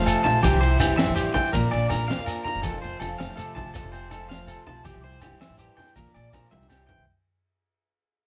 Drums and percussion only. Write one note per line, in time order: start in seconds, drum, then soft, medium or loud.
0.06 ride medium
0.06 low conga soft
0.06 low agogo medium
0.06 shekere loud
0.25 ride medium
0.25 low conga medium
0.42 kick medium
0.42 ride medium
0.42 high conga loud
0.42 low agogo medium
0.42 shekere loud
0.52 low conga medium
0.63 ride medium
0.80 ride medium
0.80 low conga medium
0.80 low agogo medium
0.80 shekere loud
0.90 low conga soft
0.98 snare medium
0.98 ride medium
0.98 high conga medium
0.98 low agogo medium
1.07 low conga medium
1.17 ride medium
1.17 shekere loud
1.34 kick medium
1.34 ride medium
1.34 low conga loud
1.34 low agogo medium
1.34 shekere soft
1.53 kick medium
1.53 ride medium
1.53 high conga medium
1.53 shekere loud
1.63 low conga medium
1.71 ride medium
1.71 low agogo medium
1.89 ride soft
1.89 low conga loud
1.89 low agogo medium
1.89 shekere loud
2.10 snare loud
2.10 ride medium
2.10 high conga loud
2.10 low conga soft
2.19 low conga medium
2.27 ride medium
2.27 low conga soft
2.27 low agogo medium
2.27 shekere loud
2.45 ride medium
2.45 low conga loud
2.55 low conga soft
2.63 kick medium
2.63 ride medium
2.63 high conga loud
2.63 low agogo medium
2.63 shekere loud
2.74 low conga medium
2.84 ride medium
3.00 ride medium
3.00 low conga loud
3.00 low agogo medium
3.00 shekere loud
3.11 low conga soft
3.19 snare loud
3.19 ride medium
3.19 high conga loud
3.19 low agogo medium
3.29 low conga medium
3.38 ride medium
3.38 shekere loud
3.56 kick medium
3.56 ride medium
3.56 low conga loud
3.56 low agogo medium
3.56 shekere soft
3.75 kick medium
3.75 ride medium
3.75 high conga loud
3.75 shekere loud
3.84 low conga medium
3.93 ride medium
3.93 low agogo medium
4.02 low conga soft
4.11 ride medium
4.11 low conga loud
4.11 low agogo medium
4.11 shekere medium
4.30 snare loud
4.30 ride medium
4.30 high conga loud
4.30 low conga soft
4.39 low conga medium
4.47 ride medium
4.47 low conga soft
4.47 low agogo medium
4.47 shekere loud
4.67 ride medium
4.67 low conga loud
4.76 low conga soft
4.85 kick medium
4.85 ride medium
4.85 high conga loud
4.85 low conga soft
4.85 low agogo medium
4.85 shekere medium
4.94 low conga medium
4.94 shekere soft
5.05 ride medium
5.12 shekere soft
5.21 ride medium
5.21 low conga loud
5.21 low agogo medium
5.21 shekere medium
5.41 snare medium
5.41 ride medium
5.41 high conga loud
5.41 low agogo medium
5.51 low conga medium
5.58 ride soft
5.58 shekere medium
5.70 low conga soft
5.77 snare soft
5.77 ride medium
5.77 low conga loud
5.77 low agogo medium
5.87 low conga soft
5.87 shekere soft
5.96 kick medium
5.96 ride medium
5.96 high conga loud
5.96 low conga soft
5.96 shekere loud
6.07 low conga medium
6.14 ride medium
6.14 low conga soft
6.14 low agogo medium
6.14 shekere soft
6.33 kick medium
6.33 ride medium
6.33 low conga loud
6.33 low agogo medium
6.33 shekere medium
6.45 low conga soft
6.52 high tom medium
6.52 high conga loud
6.52 shekere soft
6.61 low conga loud
6.61 shekere soft
6.70 snare medium
6.70 low agogo medium
6.70 shekere loud
6.89 floor tom medium
6.89 low conga loud
6.99 low conga soft